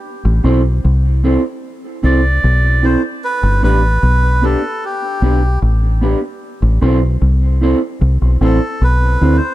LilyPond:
<<
  \new Staff \with { instrumentName = "Melodica" } { \time 4/4 \key a \dorian \tempo 4 = 75 r2 r8 d''4 c''8 | b'8 b'4 a'8 g'4 r4 | r2 r8 a'8 \tuplet 3/2 { b'4 c''8 } | }
  \new Staff \with { instrumentName = "Clean electric guitar" } { \time 4/4 \key a \dorian r8 <c' e' a' c''>8 r8 <c' e' a' c''>8 r8 <c' e' a' c''>8 r8 <c' e' a' c''>8 | r8 <b d' g' b'>8 r8 <b d' g' b'>8 r8 <b d' g' b'>8 r8 <b d' g' b'>8 | r8 <c' e' a' c''>8 r8 <c' e' a' c''>8 r8 <c' e' a' c''>8 r8 <c' e' a' c''>8 | }
  \new Staff \with { instrumentName = "Fingered electric bass" } { \clef bass \time 4/4 \key a \dorian r16 a,,16 b,,8 c,8. r8. c,8 b,,8. r16 | r16 g,,16 a,,8 b,,8. r8. b,,8 a,,8. r16 | r16 a,,16 b,,8 c,8. r16 c,16 b,,16 a,,16 r16 b,,8 d,16 r16 | }
>>